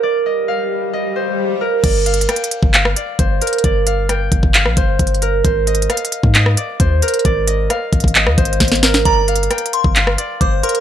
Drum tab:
CC |------------------------------------------------------------------------------------------------|x-----------------------------------------------------------------------------------------------|------------------------------------------------------------------------------------------------|------------------------------------------------------------------------------------------------|
HH |------------------------------------------------------------------------------------------------|x-----------x---x---x---x---x---x---x-----------x-----------x-----------x-----------x--x--x--x--|x-----------x-----------x-----------x-----------x-----------x-----------x---x---x---x-----------|x-----------x---x---x---x---x---x---x-----------x-----------x-----------x-----------x--x--x--x--|
CP |------------------------------------------------------------------------------------------------|------------------------------------------------x-----------------------------------------------|------------------------------------------------x-----------------------------------------------|------------------------------------------------x-----------------------------------------------|
SD |------------------------------------------------------------------------------------------------|------------------------r-----------------------------r-----------------------------------------|------------------------r-----------------------------r-----------------------------------------|------------------------r-----------------------------r-----------------------------------------|
BD |------------------------------------------------------------------------------------------------|o-----------------------------------------o-----------------------------o-----------------------|o-----------------------------------o-----o-----------------o-----------o-----------------------|o-----------------------------------------o-----------------------------o-----------------------|

CC |------------------------------------------------------------------------------------------------|------------------------------------------------------------------------------------------------|
HH |x-----------x-----------x-----------x---x---x---x-----------x---x---x---x---x---x---x-----------|x-----------x---x---x---x---x---x---x-----------x-----------x-----------x-----------x--x--x-----|
CP |------------------------------------------------x-----------------------------------------------|------------------------------------------------x-----------------------------------------------|
SD |------------------------r-----------------------------r-----------------o-----o-----o-----o-----|------------------------r-----------------------------r-----------------------------------------|
BD |o-----------------------------------o-----o-----------------o-----------o-----------------------|o-----------------------------------------o-----------------------------o-----------------------|